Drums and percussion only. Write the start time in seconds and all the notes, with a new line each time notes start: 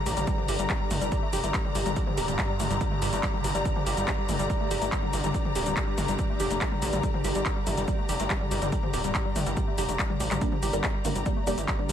0.06 open hi-hat, shaker
0.17 closed hi-hat, mid tom, shaker
0.27 kick, closed hi-hat, shaker
0.38 mid tom
0.48 open hi-hat, shaker
0.59 closed hi-hat, shaker
0.70 kick, clap, closed hi-hat, shaker
0.91 open hi-hat, mid tom, shaker
1.01 closed hi-hat, shaker
1.12 kick, closed hi-hat, shaker
1.33 open hi-hat, shaker
1.44 closed hi-hat, shaker
1.54 kick, clap, closed hi-hat, shaker
1.65 mid tom
1.75 open hi-hat, shaker
1.86 closed hi-hat, mid tom, shaker
1.96 kick, closed hi-hat, shaker
2.07 mid tom
2.18 open hi-hat, shaker
2.28 closed hi-hat, shaker
2.39 kick, clap, closed hi-hat, shaker
2.60 open hi-hat, mid tom, shaker
2.71 closed hi-hat, shaker
2.81 kick, closed hi-hat, shaker
2.92 mid tom
3.02 open hi-hat, shaker
3.13 closed hi-hat, shaker
3.23 kick, clap, closed hi-hat, shaker
3.34 mid tom
3.44 open hi-hat, shaker
3.55 closed hi-hat, mid tom, shaker
3.65 kick, closed hi-hat, shaker
3.76 mid tom
3.87 open hi-hat, shaker
3.97 closed hi-hat, shaker
4.08 kick, clap, closed hi-hat, shaker
4.29 open hi-hat, mid tom, shaker
4.39 closed hi-hat, shaker
4.50 kick, closed hi-hat, shaker
4.71 open hi-hat, shaker
4.82 closed hi-hat, shaker
4.92 kick, clap, closed hi-hat, shaker
5.03 mid tom
5.13 open hi-hat, shaker
5.24 closed hi-hat, mid tom, shaker
5.34 kick, closed hi-hat, shaker
5.45 mid tom
5.55 open hi-hat, shaker
5.66 closed hi-hat, shaker
5.77 kick, clap, closed hi-hat, shaker
5.98 open hi-hat, mid tom, shaker
6.08 closed hi-hat, shaker
6.19 kick, closed hi-hat, shaker
6.40 open hi-hat, shaker
6.51 closed hi-hat, shaker
6.61 kick, clap, closed hi-hat, shaker
6.72 mid tom
6.82 open hi-hat, shaker
6.93 closed hi-hat, mid tom, shaker
7.03 kick, closed hi-hat, shaker
7.14 mid tom
7.24 open hi-hat, shaker
7.35 closed hi-hat, shaker
7.46 kick, clap, closed hi-hat, shaker
7.67 open hi-hat, mid tom, shaker
7.77 closed hi-hat, shaker
7.88 kick, closed hi-hat, shaker
8.09 open hi-hat, shaker
8.20 closed hi-hat, shaker
8.30 kick, clap, closed hi-hat, shaker
8.41 mid tom
8.51 open hi-hat, shaker
8.62 closed hi-hat, mid tom, shaker
8.72 kick, closed hi-hat, shaker
8.83 mid tom
8.94 open hi-hat, shaker
9.04 closed hi-hat, shaker
9.15 kick, clap, closed hi-hat, shaker
9.36 open hi-hat, mid tom, shaker
9.46 closed hi-hat, shaker
9.57 kick, closed hi-hat, shaker
9.78 open hi-hat, shaker
9.89 closed hi-hat, shaker
9.99 kick, clap, closed hi-hat, shaker
10.10 mid tom
10.20 open hi-hat, shaker
10.31 clap, closed hi-hat, mid tom, shaker
10.41 kick, closed hi-hat, shaker
10.52 mid tom
10.63 open hi-hat, shaker
10.73 closed hi-hat, shaker
10.84 kick, clap, closed hi-hat, shaker
11.05 open hi-hat, mid tom, shaker
11.15 closed hi-hat, shaker
11.26 kick, closed hi-hat, shaker
11.47 open hi-hat, shaker
11.58 closed hi-hat, shaker
11.68 kick, clap, closed hi-hat, shaker
11.79 mid tom
11.89 open hi-hat, shaker